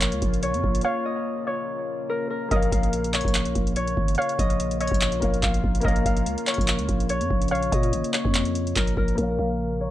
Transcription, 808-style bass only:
0.00 0.14 A#1 loud
0.12 0.22 C#2 loud
0.22 0.55 A#1 loud
0.54 0.63 F2 loud
0.64 0.84 A#1 loud
2.51 2.71 A#1 loud
2.72 3.23 A#1 loud
3.25 3.54 A#1 loud
3.56 3.95 A#1 loud
3.97 4.17 G#1 loud
4.39 4.89 A#1 loud
4.92 5.21 A#1 loud
5.22 5.42 A#1 loud
5.43 5.63 A#1 loud
5.64 5.84 A#1 loud
5.85 6.05 A#1 loud
6.05 6.28 A#1 loud
6.26 6.37 C#2 loud
6.58 6.80 A#1 loud
6.79 6.88 C#2 loud
6.89 7.22 A#1 loud
7.21 7.30 F2 loud
7.30 7.70 A#1 loud
7.72 7.95 A#2 loud
7.93 8.03 G#1 loud
8.25 8.74 F2 loud
8.76 8.96 A#1 loud
8.97 9.17 A#1 loud
9.18 9.38 A#1 loud
9.39 9.89 A#1 loud

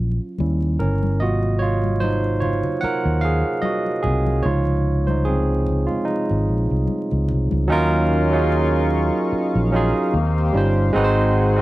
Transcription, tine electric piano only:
0.40 1.16 G3 soft
0.40 0.80 C#4 soft
0.40 1.17 E4 soft
0.79 1.18 C#4 medium
0.79 1.21 A#4 medium
1.20 2.38 C3 medium
1.20 2.38 F#3 soft
1.20 2.38 A#3 soft
1.20 1.61 F4 medium
1.20 1.59 F#4 medium
1.20 1.62 D#5 medium
1.59 1.99 F4 medium
1.59 1.97 C#5 medium
2.00 2.40 D#4 medium
2.00 2.42 C5 loud
2.40 2.80 F4 medium
2.40 2.79 C#5 medium
2.81 3.02 A#4 medium
2.81 2.99 F#5 loud
3.21 3.61 G#4 medium
3.21 3.64 F5 loud
3.62 4.02 F#4 medium
3.62 4.04 D#5 medium
4.03 4.43 C4 medium
4.03 4.45 G#4 medium
4.43 7.65 C3 soft
4.43 7.65 F3 medium
4.43 5.09 D#4 medium
4.43 5.04 F4 medium
4.43 5.09 C#5 medium
5.07 5.25 D#4 medium
5.07 5.26 C5 medium
5.25 5.86 C4 medium
5.25 5.90 G#4 medium
5.87 6.06 G#3 medium
5.87 6.06 F4 medium
6.05 6.84 G#3 medium
6.05 6.83 D#4 medium
7.68 8.27 F#3 loud
7.68 8.28 C#4 loud
7.68 8.28 D#4 loud
7.72 8.29 F4 loud
7.72 8.29 A#4 loud
8.31 9.63 F#3 medium
8.31 9.63 C#4 medium
8.31 9.64 D#4 medium
8.31 9.64 F4 medium
8.36 9.65 G#4 medium
9.71 10.12 F#3 medium
9.71 10.12 C#4 medium
9.71 10.13 D#4 medium
9.71 10.14 F4 medium
9.76 10.14 G#4 loud
10.53 10.91 G3 medium
10.53 10.91 C#4 medium
10.53 10.92 D#4 medium
10.53 10.92 F4 medium
10.57 10.93 C5 medium
10.93 11.52 G#3 loud
10.93 11.52 C4 loud
10.93 11.53 D#4 loud
10.93 11.54 F#4 medium
10.98 11.03 B4 medium
11.04 11.58 C5 loud
11.57 11.62 G#3 medium
11.57 11.62 C4 medium

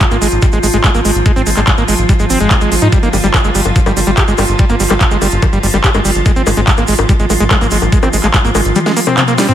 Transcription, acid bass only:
0.01 0.04 G3 medium
0.11 0.17 A#3 medium
0.22 0.28 G#3 medium
0.42 0.46 G3 loud
0.53 0.59 G#3 medium
0.63 0.67 G#3 medium
0.74 0.77 G#3 loud
0.84 0.90 G#3 loud
0.95 1.00 A#3 medium
1.05 1.11 G#3 medium
1.26 1.32 G#3 medium
1.36 1.42 C4 loud
1.47 1.50 G#3 medium
1.57 1.61 G#3 loud
1.67 1.71 G3 medium
1.78 1.84 A#3 medium
1.88 1.94 G#3 medium
2.09 2.13 G3 loud
2.20 2.25 G#3 medium
2.30 2.39 C4 medium
2.40 2.49 G#3 medium
2.61 2.70 G#3 medium
2.72 2.75 G#3 medium
2.82 2.88 D#4 medium
2.93 2.98 G3 medium
3.03 3.09 A#3 loud
3.13 3.17 G3 medium
3.24 3.27 G3 loud
3.34 3.38 F3 medium
3.45 3.50 G#3 medium
3.55 3.61 G3 medium
3.76 3.79 F3 loud
3.86 3.92 G3 medium
3.97 4.00 G3 medium
4.07 4.11 G3 loud
4.17 4.23 G4 loud
4.28 4.34 G#3 medium
4.38 4.44 G3 medium
4.59 4.65 G3 medium
4.70 4.76 A#3 loud
4.80 4.84 G3 medium
4.90 4.94 G3 loud
5.01 5.04 F3 medium
5.11 5.17 G#3 medium
5.22 5.28 G3 medium
5.42 5.46 F3 loud
5.53 5.59 G3 medium
5.63 5.67 G3 medium
5.74 5.77 G3 loud
5.84 5.90 G4 loud
5.95 6.00 G#3 medium
6.05 6.11 G3 medium
6.26 6.32 G#3 medium
6.36 6.42 C4 loud
6.47 6.50 G#3 medium
6.57 6.61 G#3 loud
6.67 6.71 G3 medium
6.78 6.84 A#3 medium
6.88 6.94 G#3 medium
7.09 7.13 G3 loud
7.20 7.25 G#3 medium
7.30 7.34 G#3 medium
7.40 7.44 G#3 loud
7.51 7.57 G#3 loud
7.61 7.67 A#3 medium
7.72 7.78 G#3 medium
7.92 7.98 G#3 medium
8.03 8.09 C4 loud
8.13 8.17 G#3 medium
8.24 8.27 G#3 loud
8.34 8.38 G3 medium
8.45 8.50 A#3 medium
8.55 8.61 G#3 medium
8.76 8.79 G3 loud
8.86 8.92 G#3 medium
8.97 9.00 A#3 medium
9.07 9.16 C4 medium
9.17 9.23 C4 medium
9.28 9.34 A#3 medium
9.38 9.47 G3 medium
9.49 9.54 C4 loud

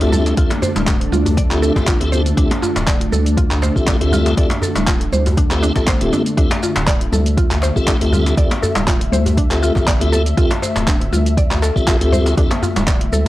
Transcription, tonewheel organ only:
0.01 0.35 C4 medium
0.01 0.35 F4 medium
0.01 0.35 G4 medium
0.01 0.35 A4 medium
0.01 0.35 E5 loud
0.37 0.52 C4 medium
0.37 0.52 F4 medium
0.37 0.52 G4 medium
0.37 0.52 A4 medium
0.37 0.52 E5 medium
1.51 1.73 C4 medium
1.51 1.73 F4 medium
1.51 1.73 G4 medium
1.51 1.73 A4 medium
1.51 1.73 E5 medium
1.76 1.89 C4 medium
1.76 1.89 F4 medium
1.76 1.89 G4 medium
1.76 1.89 A4 medium
1.76 1.89 E5 loud
2.01 2.22 C4 medium
2.01 2.22 F4 medium
2.01 2.22 G4 medium
2.01 2.22 A4 medium
2.01 2.22 E5 medium
2.37 2.52 C4 medium
2.37 2.52 F4 medium
2.37 2.52 G4 medium
2.37 2.52 A4 medium
2.37 2.52 E5 medium
3.76 3.97 C4 medium
3.76 3.97 F4 medium
3.76 3.97 G4 medium
3.76 3.97 A4 medium
3.76 3.97 E5 loud
4.01 4.35 C4 medium
4.01 4.35 F4 medium
4.01 4.35 G4 medium
4.01 4.35 A4 medium
4.01 4.35 E5 loud
4.37 4.52 C4 medium
4.37 4.52 F4 medium
4.37 4.52 G4 medium
4.37 4.52 A4 medium
4.37 4.52 E5 medium
5.51 5.73 C4 medium
5.51 5.73 F4 medium
5.51 5.73 G4 medium
5.51 5.73 A4 medium
5.51 5.73 E5 medium
5.76 5.89 C4 medium
5.76 5.89 F4 medium
5.76 5.89 G4 medium
5.76 5.89 A4 medium
5.76 5.89 E5 loud
6.01 6.22 C4 medium
6.01 6.22 F4 medium
6.01 6.22 G4 medium
6.01 6.22 A4 medium
6.01 6.22 E5 medium
6.37 6.52 C4 medium
6.37 6.52 F4 medium
6.37 6.52 G4 medium
6.37 6.52 A4 medium
6.37 6.52 E5 loud
7.76 7.97 C4 medium
7.76 7.97 F4 medium
7.76 7.97 G4 medium
7.76 7.97 A4 medium
7.76 7.97 E5 loud
8.01 8.35 C4 medium
8.01 8.35 F4 medium
8.01 8.35 G4 medium
8.01 8.35 A4 medium
8.01 8.35 E5 medium
8.37 8.52 C4 medium
8.37 8.52 F4 medium
8.37 8.52 G4 medium
8.37 8.52 A4 medium
8.37 8.52 E5 medium
9.51 9.73 C4 medium
9.51 9.73 F4 medium
9.51 9.73 G4 medium
9.51 9.73 A4 medium
9.51 9.73 E5 medium
9.76 9.89 C4 medium
9.76 9.89 F4 medium
9.76 9.89 G4 medium
9.76 9.89 A4 medium
9.76 9.89 E5 loud
10.01 10.22 C4 medium
10.01 10.22 F4 medium
10.01 10.22 G4 medium
10.01 10.22 A4 medium
10.01 10.22 E5 medium
10.37 10.52 C4 medium
10.37 10.52 F4 medium
10.37 10.52 G4 medium
10.37 10.52 A4 medium
10.37 10.52 E5 loud
11.76 11.97 C4 medium
11.76 11.97 F4 medium
11.76 11.97 G4 medium
11.76 11.97 A4 medium
11.76 11.97 E5 loud
12.01 12.35 C4 medium
12.01 12.35 F4 medium
12.01 12.35 G4 medium
12.01 12.35 A4 medium
12.01 12.35 E5 loud
12.38 12.52 C4 medium
12.38 12.52 F4 medium
12.38 12.52 G4 medium
12.38 12.52 A4 medium
12.38 12.52 E5 medium

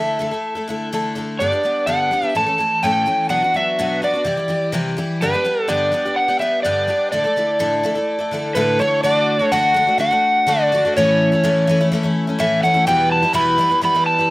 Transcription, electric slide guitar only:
0.00 0.88 E5 medium
1.39 1.88 D5 medium
1.86 2.36 F#5 medium
2.37 2.85 A5 loud
2.83 3.30 G5 loud
3.30 3.55 F#5 medium
3.56 4.04 E5 medium
4.04 4.71 D5 medium
5.22 5.71 B4 medium
5.69 6.18 D5 medium
6.16 6.40 F#5 loud
6.40 6.63 E5 medium
6.63 7.11 D5 medium
7.12 8.76 D5 medium
8.55 8.80 B4 medium
8.80 9.02 C#5 medium
9.04 9.41 D5 loud
9.41 9.53 C#5 loud
9.52 9.99 F#5 loud
10.01 10.50 F#5 loud
10.48 10.93 D5 medium
10.97 11.88 C#5 medium
12.40 12.62 E5 medium
12.64 12.87 F#5 medium
12.88 13.12 G5 loud
13.12 13.34 A5 loud
13.35 13.80 B5 loud
13.85 14.06 B5 loud
14.06 14.29 A5 loud

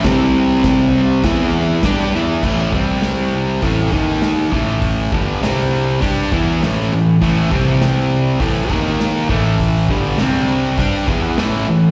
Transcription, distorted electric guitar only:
0.04 1.23 C3 loud
0.04 1.23 G3 loud
0.04 1.24 C4 loud
1.25 1.83 E3 loud
1.25 1.83 B3 medium
1.25 1.84 E4 loud
1.84 2.13 G3 medium
1.84 2.13 D4 loud
1.84 2.13 G4 loud
2.15 2.43 E3 loud
2.15 2.44 B3 loud
2.15 2.44 E4 loud
2.44 2.73 A2 medium
2.44 2.73 E3 medium
2.44 2.73 A3 loud
2.74 3.62 C3 medium
2.74 3.63 G3 medium
2.74 3.63 C4 medium
3.63 3.92 A2 loud
3.63 3.92 E3 medium
3.63 3.92 A3 loud
3.92 4.51 D#3 medium
3.92 4.52 A#3 medium
3.92 4.52 D#4 medium
4.52 5.11 A2 medium
4.52 5.12 E3 loud
4.52 5.12 A3 loud
5.13 5.41 G2 medium
5.13 5.41 D3 medium
5.13 5.41 G3 loud
5.42 6.01 C3 loud
5.42 6.00 G3 loud
5.42 6.01 C4 loud
6.01 6.30 G3 medium
6.01 6.31 D4 medium
6.01 6.31 G4 loud
6.32 6.61 E3 medium
6.32 6.61 B3 loud
6.32 6.61 E4 loud
6.62 6.91 A2 medium
6.62 6.91 E3 loud
6.62 6.92 A3 medium
6.93 7.16 A2 medium
6.93 7.16 E3 medium
7.21 7.50 A2 medium
7.21 7.50 E3 loud
7.21 7.51 A3 loud
7.51 8.40 C3 loud
7.51 8.40 G3 loud
7.51 8.40 C4 loud
8.40 8.70 A2 medium
8.40 8.71 E3 loud
8.40 8.71 A3 loud
8.70 9.29 D#3 medium
8.70 9.29 A#3 loud
8.70 9.29 D#4 loud
9.29 9.88 A2 loud
9.29 9.88 E3 medium
9.29 9.89 A3 loud
9.89 10.18 G2 medium
9.89 10.19 D3 medium
9.89 10.19 G3 loud
10.19 10.78 C3 medium
10.19 10.77 G3 loud
10.19 10.79 C4 loud
10.78 11.07 G3 medium
10.78 11.08 D4 loud
10.78 11.08 G4 loud
11.06 11.36 E3 medium
11.06 11.37 B3 loud
11.06 11.37 E4 loud
11.38 11.67 A2 medium
11.38 11.67 E3 loud
11.38 11.68 A3 loud
11.68 11.91 A2 medium
11.68 11.91 E3 medium

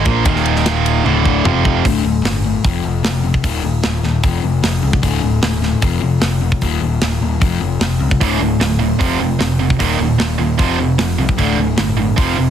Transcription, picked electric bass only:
0.06 0.24 A#1 loud
0.25 1.01 D#1 medium
1.05 1.42 D1 medium
1.44 1.81 F1 medium
1.85 2.01 D1 medium
2.04 2.21 D1 medium
2.23 2.56 G1 medium
2.65 2.81 F1 loud
2.85 3.01 F1 medium
3.04 3.36 F1 loud
3.43 3.60 D#1 medium
3.63 3.80 D#1 medium
3.84 4.00 D#1 medium
4.03 4.20 D#1 medium
4.24 4.40 F1 medium
4.43 4.59 F1 medium
4.63 4.79 F1 loud
4.83 4.99 C#2 medium
5.03 5.19 D1 medium
5.23 5.39 D1 medium
5.42 5.75 D#1 medium
5.82 5.99 F1 loud
6.02 6.18 F1 medium
6.22 6.54 F1 loud
6.62 6.78 D#1 medium
6.81 6.97 D#1 medium
7.02 7.18 D#1 medium
7.21 7.37 D#1 medium
7.41 7.58 F1 medium
7.60 7.77 F1 medium
7.80 7.96 F1 medium
7.99 8.16 C#2 medium
8.21 8.37 D1 medium
8.39 8.56 D1 medium
8.59 8.92 D1 medium
9.00 9.17 F1 medium
9.19 9.36 F1 medium
9.39 9.72 F1 loud
9.80 9.96 D#1 medium
9.99 10.15 D#1 medium
10.19 10.36 D#1 medium
10.39 10.55 D#1 medium
10.59 10.75 F1 loud
10.79 10.95 F1 medium
10.99 11.15 F1 loud
11.18 11.34 C2 medium
11.39 11.55 D1 medium
11.57 11.74 D1 medium
11.77 12.10 G1 medium
12.18 12.34 F1 medium
12.38 12.50 F1 medium

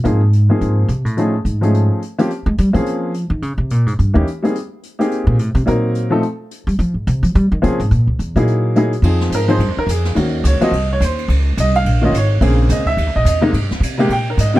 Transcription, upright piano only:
0.04 0.20 F3 soft
0.04 0.20 A#3 soft
0.04 0.20 C4 soft
0.04 0.20 D#4 soft
0.04 0.20 G#4 medium
0.49 0.87 F3 soft
0.49 0.87 A#3 soft
0.49 0.87 C4 soft
0.49 0.87 D#4 soft
0.49 0.87 G#4 medium
1.17 1.32 F3 medium
1.17 1.32 A3 medium
1.17 1.33 C#4 medium
1.17 1.33 D#4 medium
1.17 1.33 G#4 medium
1.61 1.99 F3 medium
1.61 1.99 A3 soft
1.61 1.99 C#4 soft
1.61 2.00 D#4 medium
1.61 2.00 G#4 medium
2.19 2.29 F3 medium
2.19 2.29 A#3 medium
2.19 2.29 C4 medium
2.19 2.29 C#4 medium
2.19 2.29 G4 medium
2.73 3.11 F3 medium
2.73 3.11 A#3 medium
2.73 3.11 C4 medium
2.73 3.12 C#4 medium
2.73 3.12 G#4 medium
4.14 4.24 E3 medium
4.14 4.25 A#3 medium
4.14 4.25 C#4 medium
4.14 4.25 D#4 medium
4.14 4.26 G4 medium
4.42 4.53 G3 medium
4.42 4.53 A#3 medium
4.42 4.54 C4 medium
4.42 4.54 D#4 medium
4.42 4.54 G#4 medium
4.99 5.36 A#3 medium
4.99 5.37 C4 medium
4.99 5.37 D#4 medium
4.99 5.36 G4 medium
4.99 5.37 G#4 medium
5.66 6.08 F#3 medium
5.66 6.08 A#3 medium
5.66 6.09 C4 medium
5.66 6.09 D#4 medium
5.66 6.09 A#4 medium
6.10 6.21 F3 medium
6.10 6.21 A3 medium
6.10 6.22 C4 medium
6.10 6.22 D#4 medium
6.10 6.22 A4 medium
7.62 7.78 F3 medium
7.62 7.78 A#3 medium
7.62 7.78 C4 medium
7.62 7.79 C#4 medium
7.62 7.79 G#4 medium
8.36 8.73 F#3 medium
8.36 8.74 A#3 medium
8.36 8.74 D#4 medium
8.36 8.74 E4 medium
8.36 8.74 G#4 medium
8.76 8.91 F#3 medium
8.76 8.91 A#3 medium
8.76 8.92 D#4 medium
8.76 8.92 E4 medium
8.76 8.92 G#4 medium
9.03 9.45 F3 medium
9.03 9.46 C4 medium
9.03 9.46 D#4 medium
9.03 9.46 G#4 medium
9.35 9.50 A#4 medium
9.48 9.59 F3 medium
9.48 9.59 C4 medium
9.48 9.59 D#4 medium
9.48 9.59 G#4 medium
9.48 9.76 C5 medium
9.79 9.89 A#4 medium
9.90 10.16 G#4 medium
10.15 10.57 D#3 medium
10.15 10.58 A#3 medium
10.15 10.58 C#4 medium
10.15 10.58 F#4 medium
10.47 10.62 C#5 medium
10.61 10.71 F3 medium
10.61 10.71 A#3 medium
10.61 10.72 C4 medium
10.61 10.72 F#4 medium
10.61 10.89 D#5 medium
10.93 11.02 C#5 medium
11.04 11.29 C5 medium
11.60 11.75 D#5 medium
11.76 12.01 F5 loud
12.02 12.12 D#3 medium
12.02 12.12 A#3 medium
12.02 12.13 C#4 medium
12.02 12.13 F4 medium
12.02 12.15 D#5 medium
12.17 12.42 C#5 medium
12.41 12.83 C#3 medium
12.41 12.83 A#3 medium
12.41 12.83 C4 medium
12.41 12.84 G#4 medium
12.72 12.87 D#5 medium
12.87 13.13 E5 medium
13.16 13.26 D#5 medium
13.28 13.53 D#5 medium
13.41 13.52 C3 medium
13.41 13.52 G#3 medium
13.41 13.53 A#3 medium
13.41 13.53 D#4 loud
13.98 14.08 C3 medium
13.98 14.09 G#3 medium
13.98 14.09 A#3 medium
13.98 14.10 G4 medium
14.12 14.28 G5 medium
14.30 14.39 A#4 medium
14.40 14.56 D#5 medium
14.54 14.60 C#3 medium
14.54 14.60 G3 medium
14.54 14.60 A#3 medium
14.54 14.60 F4 medium

